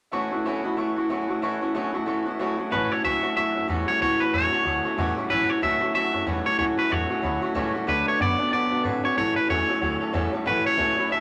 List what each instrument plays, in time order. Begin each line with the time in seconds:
0.12 clean electric guitar A2 E3, steel-string acoustic guitar A3 C#4 E4 F#4, upright piano E5 A5 C#6
0.31 clean electric guitar A2 E3, steel-string acoustic guitar C#4 E4 F#4, upright piano E5 A5 C#6
0.44 clean electric guitar A2 F#3, steel-string acoustic guitar A3 C#4 E4 F#4, upright piano E5 A5 C#6
0.63 clean electric guitar A2 F#3, steel-string acoustic guitar C#4 E4 F#4, upright piano E5 A5 B5
0.77 clean electric guitar A2 E3, steel-string acoustic guitar A3 C#4 E4 F#4, upright piano E5 A5 C#6
0.96 clean electric guitar A2 E3, steel-string acoustic guitar C#4 E4 F#4, upright piano E5 A5 C#6
1.09 clean electric guitar A2 F#3, steel-string acoustic guitar A3 C#4 E4 F#4, upright piano E5 A5 C#6
1.28 clean electric guitar A2 F#3, steel-string acoustic guitar C#4 E4 F#4, upright piano E5 A5 C#6
1.41 clean electric guitar A2 E3, steel-string acoustic guitar A3 C#4 E4 F#4, upright piano E5 A5 C#6
1.61 clean electric guitar A2 E3, steel-string acoustic guitar C#4 E4 F#4, upright piano E5 A5 C#6
1.74 clean electric guitar A2 F#3, steel-string acoustic guitar A3 C#4 E4 F#4, upright piano E5 A5 C#6
1.93 clean electric guitar A2 F#3, steel-string acoustic guitar C#4 E4 F#4, upright piano E5 A5 C#6
2.06 clean electric guitar A2 E3, steel-string acoustic guitar A3 C#4 E4 F#4, upright piano E5 A5 C#6
2.25 clean electric guitar A2 E3, steel-string acoustic guitar C#4 E4 F#4, upright piano E5 A5 C#6
2.39 clean electric guitar A2 F#3, steel-string acoustic guitar A3 C#4 E4 F#4, upright piano E5 A5 C#6
2.57 clean electric guitar A2 F#3, steel-string acoustic guitar C#4 E4 F#4, upright piano E5 A5 C#6
2.71 upright bass A1, clean electric guitar A2 E3 B4, steel-string acoustic guitar A2 E3 F#3 A3 C#4 F#4, upright piano E5 A5 C#6
2.90 steel-string acoustic guitar F#3 A3 C#4 F#4, clean electric guitar C#5, upright piano E5 A5 E6, muted upright bass stroke
3.04 upright bass C#2, clean electric guitar A2 F#3 E5, steel-string acoustic guitar A2 E3 F#3 A3 C#4 F#4, upright piano E5 C#6
3.23 clean electric guitar A2 F#3, steel-string acoustic guitar F#3 A3 C#4 F#4, upright piano E5 A5 C#6, muted upright bass stroke
3.35 upright bass E2, clean electric guitar A2 F#3 E5, steel-string acoustic guitar F#3 A3 C#4 F#4, upright piano E5 A5 C#6
3.55 upright bass F#2, steel-string acoustic guitar F#3 A3 C#4 F#4, upright piano E5 A5 E6
3.68 upright bass E2, steel-string acoustic guitar A2 E3 F#3 A3 C#4 F#4, clean electric guitar A2 G3, upright piano E5 A5 E6
3.87 clean electric guitar A2 G3 C#5, steel-string acoustic guitar F#3 A3 C#4 F#4, upright piano E5 A5 C#6
4.00 upright bass C#2, clean electric guitar A2 E3 C#5, steel-string acoustic guitar A2 E3 F#3 A3 C#4 F#4, upright piano E5 A5 C#6
4.20 steel-string acoustic guitar F#3 A3 C#4 F#4, clean electric guitar B4, upright piano E5 A5 B5, muted upright bass stroke
4.32 upright bass E2, clean electric guitar A2 F#3 C#5, steel-string acoustic guitar A2 E3 F#3 A3 C#4 F#4, upright piano E5 A5 E6
4.51 clean electric guitar A2 F#3, steel-string acoustic guitar F#3 A3 C#4 F#4, upright piano E5 A5 C#6
4.65 upright bass D2, clean electric guitar A2 F#3, steel-string acoustic guitar F#3 A3 C#4 F#4, upright piano E5 A5 C#6
4.84 steel-string acoustic guitar F#3 A3 C#4 F#4, upright piano E5 A5 C#6
4.97 upright bass E2, clean electric guitar A2 G3, steel-string acoustic guitar A2 E3 F#3 A3 C#4 F#4, upright piano E5 A5 C#6
5.16 clean electric guitar A2 G3, steel-string acoustic guitar F#3 A3 C#4 F#4, upright piano E5 A5 C#6
5.29 upright bass A1, steel-string acoustic guitar A2 E3 F#3 A3 C#4 F#4, clean electric guitar A2 E3 B4, upright piano E5 A5 E6
5.48 steel-string acoustic guitar F#3 A3 C#4 F#4, clean electric guitar C#5, upright piano E5 A5 C#6, muted upright bass stroke
5.62 upright bass C#2, steel-string acoustic guitar A2 E3 F#3 A3 C#4 F#4, clean electric guitar A2 F#3 E5, upright piano E5 A5 E6
5.80 clean electric guitar A2 F#3, steel-string acoustic guitar F#3 A3 C#4 F#4, upright piano E5 A5 C#6
5.93 upright bass E2, clean electric guitar A2 F#3 E5, steel-string acoustic guitar F#3 A3 C#4 F#4, upright piano E5 A5 C#6
6.13 upright bass F#2, steel-string acoustic guitar F#3 A3 C#4 F#4, upright piano E5 A5 C#6
6.25 upright bass E2, steel-string acoustic guitar A2 E3 F#3 A3 C#4 F#4, clean electric guitar A2 G3, upright piano E5 A5 B5
6.45 clean electric guitar A2 G3 C#5, steel-string acoustic guitar F#3 A3 C#4 F#4, upright piano E5 A5 C#6
6.58 upright bass C#2, clean electric guitar A2 E3 C#5, steel-string acoustic guitar A2 E3 F#3 A3 C#4 F#4, upright piano E5 A5 C#6
6.77 steel-string acoustic guitar F#3 A3 C#4 F#4, clean electric guitar B4, upright piano E5 A5 C#6, muted upright bass stroke
6.90 upright bass E2, steel-string acoustic guitar A2 E3 F#3 A3 C#4 F#4, clean electric guitar A2 F#3 C#5, upright piano E5 A5 C#6
7.09 clean electric guitar A2 F#3, steel-string acoustic guitar F#3 A3 C#4 F#4, upright piano E5 A5 C#6
7.22 upright bass D2, clean electric guitar A2 F#3, steel-string acoustic guitar F#3 A3 C#4 F#4, upright piano E5 A5 B5
7.41 steel-string acoustic guitar F#3 A3 C#4 F#4, upright piano E5 A5 C#6
7.54 upright bass C#2, steel-string acoustic guitar A2 E3 F#3 A3 C#4 F#4, clean electric guitar A2 G3, upright piano E5 A5 C#6
7.73 clean electric guitar A2 G3, steel-string acoustic guitar F#3 A3 C#4 F#4, upright piano E5 A5 C#6
7.87 upright bass D2, steel-string acoustic guitar D3 F#3 A3 F#4 B4, clean electric guitar D3 A3 B4, upright piano D5 F#5 A5
8.06 steel-string acoustic guitar A3 F#4 B4, clean electric guitar C#5, upright piano D5 F#5 A5
8.19 upright bass F#2, steel-string acoustic guitar D3 F#3 A3 F#4 B4, clean electric guitar D3 B3 D5, upright piano D5 F#5 B5
8.38 clean electric guitar D3 B3, steel-string acoustic guitar A3 F#4 B4, upright piano D5 F#5 A5
8.51 upright bass A2, clean electric guitar D3 B3 D5, steel-string acoustic guitar F#3 A3 F#4 B4, upright piano D5 F#5 A5
8.71 upright bass B2, steel-string acoustic guitar A3 F#4 B4, upright piano D5 F#5 A5
8.83 upright bass A2, steel-string acoustic guitar D3 F#3 A3 F#4 B4, clean electric guitar D3 C4, upright piano D5 F#5 A5
9.03 clean electric guitar D3 C4 C#5, steel-string acoustic guitar A3 F#4 B4, upright piano D5 F#5 G#5, muted upright bass stroke
9.16 upright bass A1, steel-string acoustic guitar A2 E3 F#3 A3 C#4 A4, clean electric guitar A2 E3 C#5, upright piano C#5 E5 A5
9.35 steel-string acoustic guitar F#3 A3 C#4 A4, clean electric guitar B4, upright piano C#5 E5 A5, muted upright bass stroke
9.49 upright bass E2, clean electric guitar A2 F#3 C#5, steel-string acoustic guitar A2 E3 F#3 A3 C#4 A4, upright piano C#5 E5 F#5
9.68 clean electric guitar A2 F#3, steel-string acoustic guitar F#3 A3 C#4 A4, upright piano C#5 E5 G#5
9.81 upright bass D2, clean electric guitar A2 F#3, steel-string acoustic guitar F#3 A3 C#4 A4, upright piano C#5 E5 F#5
10.00 steel-string acoustic guitar F#3 A3 C#4 A4, upright piano C#5 E5 A5
10.13 upright bass E2, steel-string acoustic guitar A2 E3 F#3 A3 C#4 A4, clean electric guitar A2 G3, upright piano C#5 E5 G#5
10.32 clean electric guitar A2 G3, steel-string acoustic guitar F#3 A3 C#4 A4, upright piano C#5 E5 A5
10.45 upright bass A1, steel-string acoustic guitar A2 E3 F#3 A3 C#4 A4, clean electric guitar A2 E3 B4, upright piano C#5 E5 F#5
10.64 steel-string acoustic guitar F#3 A3 C#4 A4, upright piano C#5 E5 A5, clean electric guitar C#5, muted upright bass stroke
10.77 upright bass C#2, steel-string acoustic guitar A2 E3 F#3 A3 C#4 A4, clean electric guitar A2 F#3, upright piano C#5 E5 A5
10.96 clean electric guitar A2 F#3, steel-string acoustic guitar F#3 A3 C#4 A4, upright piano C#5 E5 B5, muted upright bass stroke
11.09 upright bass E2, clean electric guitar A2 F#3 E5, steel-string acoustic guitar F#3 A3 C#4 A4, upright piano C#5 E5 A5